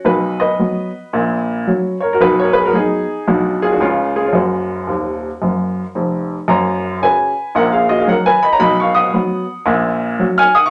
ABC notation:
X:1
M:4/4
L:1/16
Q:"Swing" 1/4=112
K:F#
V:1 name="Upright piano"
[FB]2 [Bd]12 [Ac] [FA] | [FB] [Ac] [GB] [FA] [DG]4 [=DF]2 [EG] [DF] [CE]2 [EG] [CE] | [CF]12 z4 | [ca]4 [Bg]4 [Af] [Ge] [Fd] [Ge] [Af] [Bg] [db] [ca] |
[db] [ec'] [fd']8- [fd']3 [ge'] [fd'] [ec'] |]
V:2 name="Upright piano" clef=bass
[B,,,B,,]4 [F,B,F]4 [A,,,A,,]4 [F,CF]4 | [B,,,B,,]4 [F,B,]4 [B,,,B,,F,B,]4 [C,,C,G,]4 | [F,,,F,,]4 [D,,,D,,]4 [F,,,F,,]4 [E,,,E,,]4 | [F,,,F,,]4 [C,CF]4 [A,,,A,,]4 [F,CF]4 |
[B,,,B,,]4 [F,B,F]4 [A,,,A,,]4 [F,CF]4 |]